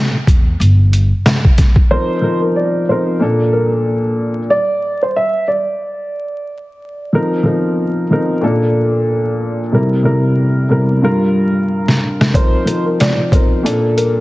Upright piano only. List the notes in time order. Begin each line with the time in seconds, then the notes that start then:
1.91 C5
2.42 A#4
2.56 D5
2.89 C5
3.53 A#4
4.50 D5
5.03 C5
5.16 E5
5.48 D5
12.35 C5
12.86 A#4
13.00 D5
13.33 C5
13.97 A#4